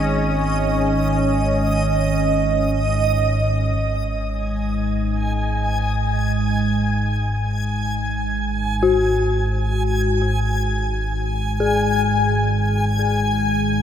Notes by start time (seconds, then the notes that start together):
Already playing: G#1 G#2 D#3 G#3 C#4 D#4 D#5
3.74 G#1 G#2 G#5
8.83 F#4
11.60 G#4